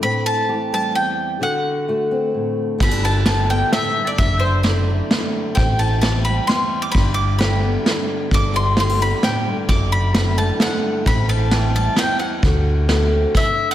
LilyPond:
<<
  \new Staff \with { instrumentName = "Mandolin" } { \time 3/4 \key g \major \tempo 4 = 131 b''8 a''4 a''8 g''4 | fis''2 r4 | b''8 a''8 a''8 g''8 e''8. d''16 | e''8 c''8 d''4. r8 |
g''8 a''8 a''8 b''8 c'''8. d'''16 | b''8 d'''8 b''4. r8 | d'''8 c'''8 c'''8 b''8 g''8. r16 | d'''8 b''8 b''8 a''8 fis''8. r16 |
b''8 a''4 a''8 g''8 fis''8~ | fis''2 e''8. fis''16 | }
  \new Staff \with { instrumentName = "Steel-string acoustic guitar" } { \clef bass \time 3/4 \key g \major << { <c' e'>4 g'8 g4. | fis'4 fis'8 c'4. | b16 d'8. g'8 b4. | d'4 e'8 a4. |
c'4 g'8 g4. | d'4 g'8 b4. | d'4 e'16 g'16 b4. | d'4 e'8 a4. |
c'4 g'8 g4. | fis'4 fis'8 c'8 r4 | } \\ { a,4 e4 e,4 | d4 a4 a,4 | g,4 d4 a,8 g,8 | fis,4 d4 fis,4 |
a,4 e4 e,4 | g,4 d4 g,4 | g,4 d4 a,8 g,8 | fis,4 d4 fis,8 g,8 |
a,4 e4 e,4 | d4 a4 r4 | } >> }
  \new Staff \with { instrumentName = "Picked electric bass" } { \clef bass \time 3/4 \key g \major r2. | r2. | g,,2 r4 | fis,,2 r4 |
a,,2 r4 | g,,2 r4 | g,,2 r4 | fis,,2 r4 |
a,,2 r4 | d,2 r4 | }
  \new DrumStaff \with { instrumentName = "Drums" } \drummode { \time 3/4 r4 r4 r4 | r4 r4 r4 | <cymc bd>8 cymr8 <cymr sn>4 <cymr sn>4 | <bd cymr>4 <cymr sn>4 <cymr sn>4 |
<bd cymr>8 cymr8 <cymr sn>4 <cymr sn>4 | <bd cymr>4 <cymr sn>4 <cymr sn>4 | <bd cymr>8 cymr8 <cymr sn>4 <cymr sn>4 | <bd cymr>4 <cymr sn>4 <cymr sn>4 |
<bd cymr>8 cymr8 <cymr sn>4 <cymr sn>4 | <bd cymr>4 <cymr sn>4 <cymc bd>4 | }
>>